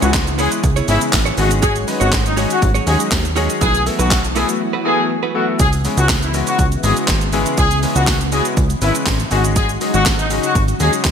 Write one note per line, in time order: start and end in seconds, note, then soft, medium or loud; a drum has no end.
0.00 0.48 C#2 loud
0.00 1.34 C#3 medium
0.00 1.34 E3 medium
0.00 0.12 G#3 medium
0.00 1.34 G#3 medium
0.00 0.12 B3 medium
0.00 1.34 B3 medium
0.00 0.17 B3 medium
0.00 0.12 C#4 medium
0.00 0.12 E4 medium
0.00 1.34 E4 loud
0.00 0.17 E4 medium
0.00 0.22 F#4 medium
0.00 0.12 G#4 medium
0.00 0.17 G#4 medium
0.00 0.16 C#5 medium
0.00 closed hi-hat medium
0.00 shaker medium
0.14 kick loud
0.14 snare medium
0.14 clap loud
0.14 closed hi-hat medium
0.14 tambourine medium
0.14 shaker medium
0.27 muted clean electric guitar stroke medium
0.27 closed hi-hat medium
0.27 shaker medium
0.38 0.62 G#3 medium
0.38 0.58 B3 medium
0.38 0.62 B3 medium
0.38 0.62 C#4 medium
0.38 0.52 E4 medium
0.38 0.62 E4 medium
0.38 0.50 G#4 medium
0.38 0.51 G#4 medium
0.38 0.62 B4 medium
0.38 0.51 C#5 medium
0.38 open hi-hat medium
0.38 tambourine medium
0.38 shaker medium
0.52 muted clean electric guitar stroke medium
0.52 closed hi-hat medium
0.52 tambourine soft
0.52 shaker medium
0.63 0.82 C#2 loud
0.63 muted clean electric guitar stroke soft
0.63 kick loud
0.63 closed hi-hat medium
0.63 tambourine soft
0.63 shaker medium
0.76 0.87 B3 medium
0.76 0.87 E4 medium
0.76 0.88 G#4 medium
0.76 0.89 C#5 medium
0.76 closed hi-hat medium
0.76 shaker medium
0.88 0.98 G#1 medium
0.88 1.11 G#3 medium
0.88 1.04 B3 medium
0.88 1.11 B3 medium
0.88 1.11 C#4 medium
0.88 0.99 E4 medium
0.88 1.11 E4 medium
0.88 1.01 E4 medium
0.88 1.11 G#4 medium
0.88 1.00 G#4 medium
0.88 1.00 C#5 medium
0.88 open hi-hat medium
0.88 tambourine medium
0.88 shaker medium
1.01 muted clean electric guitar stroke soft
1.01 closed hi-hat medium
1.01 tambourine soft
1.01 shaker medium
1.13 1.32 A1 loud
1.13 muted clean electric guitar stroke soft
1.13 kick loud
1.13 snare loud
1.13 clap loud
1.13 closed hi-hat medium
1.13 tambourine medium
1.13 shaker medium
1.25 1.37 B3 medium
1.25 1.38 E4 medium
1.25 1.37 G#4 medium
1.25 1.37 C#5 medium
1.25 closed hi-hat medium
1.25 shaker medium
1.38 1.85 G#1 loud
1.38 3.59 D#3 medium
1.38 5.55 F#3 medium
1.38 1.78 G#3 medium
1.38 3.59 G#3 medium
1.38 3.59 C#4 medium
1.38 1.78 C#4 medium
1.38 1.78 D#4 medium
1.38 3.59 F#4 loud
1.38 1.78 F#4 medium
1.38 1.49 F#4 medium
1.38 1.78 G#4 loud
1.38 open hi-hat medium
1.38 tambourine medium
1.38 shaker medium
1.51 muted clean electric guitar stroke medium
1.51 closed hi-hat medium
1.51 tambourine soft
1.51 shaker medium
1.62 1.85 C#4 medium
1.62 1.86 F#4 loud
1.62 1.73 G#4 loud
1.62 1.86 G#4 loud
1.62 1.86 C#5 loud
1.62 kick loud
1.62 closed hi-hat medium
1.62 tambourine medium
1.62 shaker medium
1.76 closed hi-hat medium
1.76 shaker medium
1.87 2.10 G#3 medium
1.87 2.10 C#4 medium
1.87 2.11 D#4 medium
1.87 2.11 F#4 medium
1.87 2.11 B4 medium
1.87 muted clean electric guitar stroke medium
1.87 open hi-hat medium
1.87 tambourine medium
1.87 shaker medium
2.00 2.46 G#1 loud
2.00 2.16 C#4 medium
2.00 2.10 F#4 medium
2.00 2.15 F#4 medium
2.00 2.15 G#4 medium
2.00 2.15 C#5 medium
2.00 closed hi-hat medium
2.00 shaker medium
2.12 kick loud
2.12 snare medium
2.12 clap loud
2.12 closed hi-hat medium
2.12 tambourine medium
2.12 shaker medium
2.25 2.35 D#4 medium
2.25 muted clean electric guitar stroke medium
2.25 closed hi-hat medium
2.25 shaker medium
2.37 2.60 G#3 medium
2.37 2.56 C#4 medium
2.37 2.60 C#4 medium
2.37 2.60 D#4 medium
2.37 2.60 F#4 medium
2.37 2.50 F#4 medium
2.37 2.60 G#4 medium
2.37 2.50 G#4 medium
2.37 2.49 C#5 loud
2.37 open hi-hat medium
2.37 tambourine medium
2.37 shaker medium
2.50 2.71 F#4 medium
2.50 muted clean electric guitar stroke soft
2.50 closed hi-hat medium
2.50 tambourine soft
2.50 shaker medium
2.62 2.81 G#1 loud
2.62 muted clean electric guitar stroke soft
2.62 kick loud
2.62 closed hi-hat medium
2.62 tambourine soft
2.62 shaker medium
2.75 2.85 C#4 medium
2.75 2.86 F#4 medium
2.75 2.86 G#4 medium
2.75 2.87 C#5 medium
2.75 closed hi-hat medium
2.75 shaker medium
2.86 2.97 D#2 medium
2.86 3.10 G#3 medium
2.86 3.02 C#4 medium
2.86 3.10 C#4 medium
2.86 3.10 D#4 medium
2.86 3.00 F#4 medium
2.86 3.10 F#4 medium
2.86 3.10 G#4 medium
2.86 2.98 G#4 medium
2.86 2.99 G#4 medium
2.86 2.98 C#5 medium
2.86 open hi-hat medium
2.86 tambourine medium
2.86 shaker medium
3.00 muted clean electric guitar stroke medium
3.00 closed hi-hat medium
3.00 tambourine soft
3.00 shaker medium
3.11 3.49 D#2 loud
3.11 kick loud
3.11 snare loud
3.11 clap loud
3.11 closed hi-hat medium
3.11 tambourine medium
3.11 shaker medium
3.24 muted clean electric guitar stroke soft
3.24 closed hi-hat medium
3.24 shaker medium
3.36 3.59 G#3 loud
3.36 3.55 C#4 medium
3.36 3.59 C#4 medium
3.36 3.59 D#4 medium
3.36 3.49 F#4 loud
3.36 3.59 F#4 medium
3.36 3.60 G#4 loud
3.36 3.49 G#4 loud
3.36 3.48 C#5 loud
3.36 open hi-hat medium
3.36 tambourine medium
3.36 shaker medium
3.49 muted clean electric guitar stroke soft
3.49 closed hi-hat medium
3.49 tambourine soft
3.49 shaker medium
3.61 3.90 B1 loud
3.61 5.58 E3 medium
3.61 3.84 A3 medium
3.61 5.58 A3 medium
3.61 5.58 B3 medium
3.61 3.84 E4 loud
3.61 5.58 F#4 loud
3.61 3.85 F#4 medium
3.61 3.81 G#4 loud
3.61 3.85 B4 loud
3.61 kick loud
3.61 closed hi-hat medium
3.61 tambourine medium
3.61 shaker medium
3.75 closed hi-hat medium
3.75 shaker medium
3.86 4.09 A3 medium
3.86 4.09 B3 medium
3.86 4.09 E4 medium
3.86 4.09 F#4 medium
3.86 4.09 A4 medium
3.86 muted clean electric guitar stroke soft
3.86 open hi-hat medium
3.86 tambourine medium
3.86 shaker medium
3.99 4.45 B1 loud
3.99 4.14 A3 medium
3.99 4.14 E4 medium
3.99 4.13 F#4 medium
3.99 4.19 F#4 medium
3.99 4.13 B4 medium
3.99 closed hi-hat medium
3.99 shaker medium
4.11 kick loud
4.11 snare medium
4.11 clap loud
4.11 closed hi-hat medium
4.11 tambourine medium
4.11 shaker medium
4.23 muted clean electric guitar stroke soft
4.23 closed hi-hat medium
4.23 shaker medium
4.35 4.55 A3 medium
4.35 4.58 A3 medium
4.35 4.58 B3 medium
4.35 4.59 E4 medium
4.35 4.48 E4 medium
4.35 4.59 F#4 medium
4.35 4.48 F#4 medium
4.35 4.46 G#4 medium
4.35 4.59 A4 medium
4.35 4.47 B4 medium
4.35 open hi-hat medium
4.35 tambourine medium
4.35 shaker medium
4.48 muted clean electric guitar stroke soft
4.48 closed hi-hat medium
4.48 tambourine soft
4.48 shaker medium
4.60 muted clean electric guitar stroke soft
4.73 4.84 A3 medium
4.73 4.84 E4 medium
4.73 4.85 F#4 medium
4.73 4.85 B4 medium
4.85 5.00 A3 medium
4.85 5.08 A3 medium
4.85 5.08 B3 medium
4.85 5.08 E4 medium
4.85 4.98 E4 medium
4.85 5.08 F#4 medium
4.85 4.98 F#4 medium
4.85 5.05 G#4 medium
4.85 5.08 A4 medium
4.85 4.97 B4 medium
4.98 muted clean electric guitar stroke medium
5.10 muted clean electric guitar stroke soft
5.23 5.33 A3 medium
5.23 5.34 E4 medium
5.23 5.34 F#4 medium
5.23 5.35 B4 medium
5.35 5.58 A3 medium
5.35 5.58 B3 medium
5.35 5.58 E4 medium
5.35 5.45 F#4 medium
5.35 5.58 F#4 medium
5.35 5.58 A4 medium
5.35 muted clean electric guitar stroke soft
5.48 muted clean electric guitar stroke soft
5.59 5.88 C#2 loud
5.59 9.28 C#3 medium
5.59 9.28 E3 medium
5.59 11.11 G#3 medium
5.59 9.28 B3 medium
5.59 9.28 E4 loud
5.59 5.70 G#4 loud
5.59 kick loud
5.59 closed hi-hat medium
5.59 tambourine medium
5.59 shaker medium
5.73 closed hi-hat medium
5.73 tambourine soft
5.73 shaker medium
5.84 6.07 G#3 medium
5.84 6.07 B3 medium
5.84 6.07 C#4 medium
5.84 6.07 E4 medium
5.84 6.08 G#4 medium
5.84 open hi-hat medium
5.84 tambourine medium
5.84 shaker medium
5.97 6.43 C#2 loud
5.97 6.07 F#4 medium
5.97 closed hi-hat medium
5.97 shaker medium
6.09 kick loud
6.09 snare medium
6.09 clap loud
6.09 closed hi-hat medium
6.09 tambourine medium
6.09 shaker medium
6.22 6.32 E4 medium
6.22 closed hi-hat medium
6.22 shaker medium
6.34 6.57 G#3 medium
6.34 6.57 B3 medium
6.34 6.57 C#4 medium
6.34 6.57 E4 medium
6.34 6.57 F#4 medium
6.34 open hi-hat medium
6.34 tambourine medium
6.34 shaker medium
6.47 6.67 F#4 medium
6.47 closed hi-hat medium
6.47 tambourine soft
6.47 shaker medium
6.58 6.77 C#2 loud
6.58 kick loud
6.58 closed hi-hat medium
6.58 tambourine soft
6.58 shaker medium
6.72 closed hi-hat medium
6.72 shaker medium
6.83 6.93 G#1 medium
6.83 7.06 G#3 medium
6.83 7.06 B3 medium
6.83 7.07 C#4 medium
6.83 7.07 E4 medium
6.83 7.07 F#4 medium
6.83 6.94 G#4 medium
6.83 open hi-hat medium
6.83 tambourine medium
6.83 shaker medium
6.96 closed hi-hat medium
6.96 tambourine soft
6.96 shaker medium
7.08 7.45 G#1 loud
7.08 kick loud
7.08 snare medium
7.08 clap loud
7.08 closed hi-hat medium
7.08 tambourine medium
7.08 shaker medium
7.21 closed hi-hat medium
7.21 shaker medium
7.32 7.56 G#3 loud
7.32 7.56 B3 medium
7.32 7.56 C#4 medium
7.32 7.56 E4 medium
7.32 7.56 G#4 loud
7.32 open hi-hat medium
7.32 tambourine medium
7.32 shaker medium
7.46 closed hi-hat medium
7.46 tambourine soft
7.46 shaker medium
7.58 7.86 C#2 loud
7.58 7.78 G#4 loud
7.58 kick loud
7.58 closed hi-hat medium
7.58 tambourine soft
7.58 shaker medium
7.71 closed hi-hat medium
7.71 tambourine soft
7.71 shaker medium
7.83 8.06 G#3 medium
7.83 8.06 B3 medium
7.83 8.06 C#4 medium
7.83 8.06 E4 medium
7.83 8.06 G#4 medium
7.83 open hi-hat medium
7.83 tambourine medium
7.83 shaker medium
7.96 8.42 C#2 loud
7.96 8.16 F#4 medium
7.96 closed hi-hat medium
7.96 shaker medium
8.07 kick loud
8.07 snare medium
8.07 clap loud
8.07 closed hi-hat medium
8.07 tambourine medium
8.07 shaker medium
8.21 closed hi-hat medium
8.21 shaker medium
8.32 8.55 G#3 medium
8.32 8.55 B3 medium
8.32 8.55 C#4 medium
8.32 8.55 E4 medium
8.32 8.55 F#4 medium
8.32 8.43 G#4 medium
8.32 open hi-hat medium
8.32 tambourine medium
8.32 shaker medium
8.45 closed hi-hat medium
8.45 shaker medium
8.57 8.76 C#2 loud
8.57 kick loud
8.57 closed hi-hat medium
8.57 tambourine soft
8.57 shaker medium
8.70 closed hi-hat medium
8.70 shaker medium
8.82 8.92 G#1 medium
8.82 9.05 G#3 medium
8.82 9.05 B3 medium
8.82 9.05 C#4 medium
8.82 8.92 E4 medium
8.82 9.05 E4 medium
8.82 9.05 B4 medium
8.82 open hi-hat medium
8.82 tambourine medium
8.82 shaker medium
8.95 closed hi-hat medium
8.95 shaker medium
9.06 9.25 A1 loud
9.06 kick loud
9.06 snare medium
9.06 clap loud
9.06 closed hi-hat medium
9.06 tambourine medium
9.06 shaker medium
9.20 closed hi-hat medium
9.20 shaker medium
9.31 9.78 G#1 loud
9.31 11.11 C#3 medium
9.31 11.11 F#3 medium
9.31 9.72 G#3 medium
9.31 9.72 C#4 medium
9.31 9.72 D#4 medium
9.31 11.11 D#4 medium
9.31 9.42 F#4 medium
9.31 9.72 F#4 medium
9.31 11.11 F#4 medium
9.31 9.72 G#4 medium
9.31 open hi-hat medium
9.31 tambourine medium
9.31 shaker medium
9.44 closed hi-hat medium
9.44 shaker medium
9.56 9.67 G#4 loud
9.56 kick loud
9.56 closed hi-hat medium
9.56 tambourine soft
9.56 shaker medium
9.69 closed hi-hat medium
9.69 shaker medium
9.81 10.04 G#3 medium
9.81 10.04 C#4 medium
9.81 10.04 D#4 medium
9.81 10.04 F#4 medium
9.81 10.04 G#4 medium
9.81 open hi-hat medium
9.81 tambourine medium
9.81 shaker medium
9.94 10.40 G#1 loud
9.94 10.03 F#4 medium
9.94 closed hi-hat medium
9.94 shaker medium
10.06 kick loud
10.06 snare medium
10.06 clap loud
10.06 closed hi-hat medium
10.06 tambourine medium
10.06 shaker medium
10.19 10.28 D#4 medium
10.19 closed hi-hat medium
10.19 shaker medium
10.30 10.53 G#3 medium
10.30 10.53 C#4 medium
10.30 10.54 D#4 medium
10.30 10.54 F#4 medium
10.30 10.54 G#4 medium
10.30 open hi-hat medium
10.30 tambourine medium
10.30 shaker medium
10.43 10.64 F#4 medium
10.43 closed hi-hat medium
10.43 tambourine soft
10.43 shaker medium
10.55 10.74 G#1 loud
10.55 kick loud
10.55 closed hi-hat medium
10.55 tambourine soft
10.55 shaker medium
10.68 closed hi-hat medium
10.68 shaker medium
10.80 10.90 D#2 medium
10.80 11.03 G#3 medium
10.80 11.03 C#4 medium
10.80 11.03 D#4 medium
10.80 11.03 F#4 medium
10.80 10.91 G#4 medium
10.80 11.03 G#4 medium
10.80 open hi-hat medium
10.80 tambourine medium
10.80 shaker medium
10.93 closed hi-hat medium
10.93 shaker medium
11.05 11.11 D#2 loud
11.05 kick loud
11.05 snare loud
11.05 clap loud
11.05 closed hi-hat medium
11.05 tambourine medium
11.05 shaker medium